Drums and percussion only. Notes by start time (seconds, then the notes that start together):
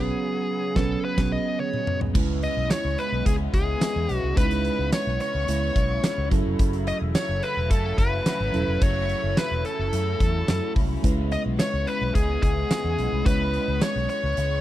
0.76 kick, snare
1.18 kick, snare, crash
1.59 high tom
1.73 mid tom
1.87 mid tom
2.01 floor tom
2.15 kick, crash
2.43 closed hi-hat
2.70 snare, closed hi-hat, tambourine
2.98 closed hi-hat
3.26 kick, closed hi-hat
3.54 kick, closed hi-hat
3.81 snare, closed hi-hat, tambourine
4.09 closed hi-hat
4.37 kick, closed hi-hat
4.51 closed hi-hat
4.65 closed hi-hat
4.92 snare, closed hi-hat, tambourine
5.20 closed hi-hat
5.48 closed hi-hat
5.76 kick, closed hi-hat
6.04 snare, closed hi-hat, tambourine
6.31 kick, closed hi-hat
6.59 kick, closed hi-hat
6.73 closed hi-hat
6.87 closed hi-hat
7.15 snare, closed hi-hat, tambourine
7.43 closed hi-hat
7.71 kick, closed hi-hat
7.98 kick, closed hi-hat
8.26 snare, closed hi-hat, tambourine
8.54 closed hi-hat
8.82 kick, closed hi-hat
9.09 closed hi-hat
9.37 snare, closed hi-hat, tambourine
9.65 closed hi-hat
9.93 closed hi-hat
10.20 kick, closed hi-hat
10.48 snare, closed hi-hat, tambourine
10.76 kick, open hi-hat
11.04 kick, closed hi-hat
11.32 closed hi-hat
11.59 snare, closed hi-hat, tambourine
11.87 closed hi-hat
12.15 kick, closed hi-hat
12.43 kick, closed hi-hat
12.71 snare, closed hi-hat, tambourine
12.98 closed hi-hat
13.26 kick, closed hi-hat
13.54 closed hi-hat
13.81 snare, closed hi-hat, tambourine
14.09 closed hi-hat
14.37 closed hi-hat